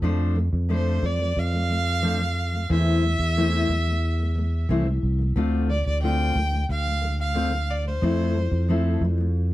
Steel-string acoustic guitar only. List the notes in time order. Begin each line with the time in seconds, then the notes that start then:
0.02 F3 A3 D4 A4 C5
0.35 F3 A3
0.69 F3 A3 D4 A4 C5
1.02 F3 A3
1.19 F3 A3
1.53 F3 A3
1.69 F3 A3
2.02 F3 A3 D4 A4 C5
2.19 F3 A3
2.53 F3 A3
2.69 E3 A3 C4 E4 C5
3.03 E3 A3
3.37 E3 A3 C4 E4 C5
3.70 E3 A3
3.86 E3 A3
4.19 E3 A3
4.35 E3 A3
4.69 E3 A3 C4 E4 C5
4.86 E3 A3
5.19 E3 A3
5.36 D3 A3 C4 F4 C5
5.69 D3 A3
6.03 D3 A3 C4 F4 C5
6.36 D3 A3
6.51 D3 A3
6.85 D3 A3
7.01 D3 A3
7.34 D3 A3 C4 F4 C5
7.51 D3 A3
7.85 D3 A3
8.02 F3 A3 C4 E4 A4
8.35 F3 A3
8.68 F3 A3 C4 E4 A4
9.01 F3 A3
9.18 F3 A3